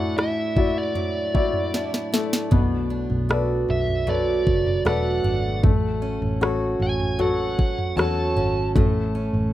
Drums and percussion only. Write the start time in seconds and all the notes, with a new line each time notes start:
0.19 cross-stick
0.56 kick, floor tom
0.95 floor tom
1.35 kick
1.53 floor tom
1.74 snare
1.94 snare
2.14 snare
2.33 snare
2.52 kick, floor tom
3.10 floor tom
3.31 cross-stick
3.69 floor tom
3.88 floor tom
4.08 floor tom
4.47 kick
4.67 floor tom
4.86 cross-stick
5.24 floor tom
5.63 kick, floor tom
6.22 floor tom
6.43 cross-stick
6.80 floor tom
7.00 floor tom
7.20 floor tom
7.59 kick
7.78 floor tom
7.99 cross-stick
8.37 floor tom
8.76 kick, floor tom
9.34 floor tom